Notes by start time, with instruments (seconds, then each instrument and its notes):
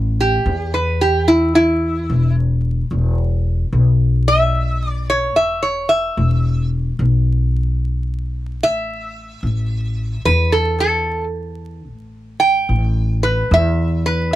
Already playing: upright bass A1
0.20 resonator guitar played with a steel bar G4
0.46 upright bass E2
0.74 resonator guitar played with a steel bar B4
1.01 resonator guitar played with a steel bar G4
1.28 resonator guitar played with a steel bar E4
1.55 resonator guitar played with a steel bar E4
2.10 upright bass E1
2.91 upright bass E1
3.72 upright bass B1
4.28 resonator guitar played with a steel bar E5
4.89 resonator guitar played with a steel bar D5
5.10 resonator guitar played with a steel bar C#5
5.36 upright bass E1, resonator guitar played with a steel bar E5
5.62 resonator guitar played with a steel bar C#5
5.89 resonator guitar played with a steel bar E5
6.17 upright bass E1
6.99 upright bass B1
8.62 upright bass A1, resonator guitar played with a steel bar E5
9.43 upright bass A1
10.25 upright bass E2, resonator guitar played with a steel bar B4
10.52 resonator guitar played with a steel bar A4
10.80 resonator guitar played with a steel bar A4
11.88 upright bass A1
12.40 resonator guitar played with a steel bar G5
12.69 upright bass A1
13.23 resonator guitar played with a steel bar B4
13.51 upright bass E2, resonator guitar played with a steel bar E5
14.06 resonator guitar played with a steel bar B4